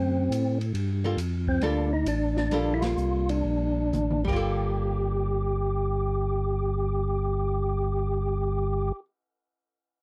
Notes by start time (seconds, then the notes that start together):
Already playing: F#2 D3 A3 C4 F#4
0.30 A2, hi-hat pedal, ride
0.61 ride
0.74 G2, ride
1.04 G3 A#3 F4 A4
1.17 F2, hi-hat pedal, ride
1.48 C4, kick
1.61 D2 G3 A#3 D4 F4 A4, ride
1.93 D#4
2.05 A1 D4, hi-hat pedal, ride
2.37 D4, snare
2.50 A#1 G3 A#3 F4 A4, ride
2.74 E4
2.81 F4, snare, ride
2.97 C2, hi-hat pedal
3.29 D4, ride
3.44 A#1
3.93 A1, hi-hat pedal, mid tom
4.11 mid tom
4.25 G1 G3 G4, kick, crash
4.29 A#3 F4
4.36 A4